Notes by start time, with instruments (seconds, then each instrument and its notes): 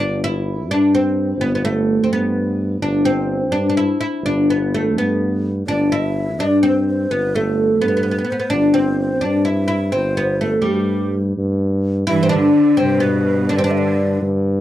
Already playing: tuba G1
0.00 oud D4
0.24 oud E4
0.67 tuba G2
0.71 oud D4
0.95 oud C4
1.38 tuba G1, oud B3
1.55 oud B3
1.65 oud A3
2.04 oud C4
2.09 tuba G2, oud B3
2.80 tuba G1, oud D4
3.05 oud C4
3.51 tuba G2, oud D4
3.69 oud D4
3.77 oud E4
4.01 oud E4
4.22 tuba G1, oud D4
4.50 oud B3
4.74 oud A3
4.95 tuba G2, oud B3
5.67 tuba G1, oud D4, ney D5
5.90 oud E4, ney E5
6.39 tuba G2, oud D4, ney D5
6.63 oud C4, ney C5
6.88 ney C5
7.10 tuba G1, oud B3, ney B4
7.35 oud A3, ney A4
7.80 tuba G2, oud B3, ney B4
7.88 oud B3
7.97 oud B3
8.03 oud B3
8.11 oud B3
8.18 oud B3
8.24 oud B3
8.30 oud B3, ney C5
8.40 oud B3
8.50 tuba G1, oud D4, ney D5
8.74 oud C4, ney C5
9.00 ney C5
9.21 tuba G2, oud D4
9.26 ney D5
9.45 oud E4, ney E5
9.68 oud E4
9.92 tuba G1, oud C4
9.96 ney C5
10.17 oud B3
10.41 oud A3, ney A4
10.62 oud G3
10.66 tuba G2, ney G4
10.74 ney F#4
10.80 ney G4
11.37 tuba G2
12.07 tuba G2, cello section E3, oud E4, ney E5
12.23 oud C4
12.29 cello section D3, oud D4, ney D5
12.77 tuba G2, cello section C3, oud C4, ney C5
13.00 cello section B2, oud B3, ney B4
13.49 tuba G2, cello section D3, oud D4, ney D5
13.58 oud C4
13.64 cello section D3, oud D4, ney D5
13.71 ney E5
13.78 ney D5
14.22 tuba G2